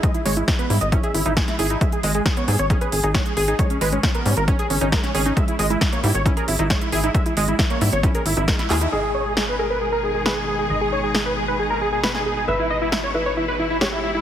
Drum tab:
HH |xxoxxxoxxxoxxxox|xxoxxxoxxxoxxxox|xxoxxxoxxxoxxxox|xxoxxxoxxxoxxxox|
CP |----------------|----------------|----------------|----------------|
SD |----o-------oo--|----o-------o---|----o-------oo--|----o-------o---|
BD |o---o---o---o---|o---o---o---o---|o---o---o---o---|o---o---o---o---|

HH |xxoxxxoxxxoxxxox|----------------|----------------|----------------|
CP |--------------x-|----------------|----------------|----------------|
SD |----o-------oo--|----o-------o---|----o-------oo--|----o-------o---|
BD |o---o---o---o---|----------------|----------------|----------------|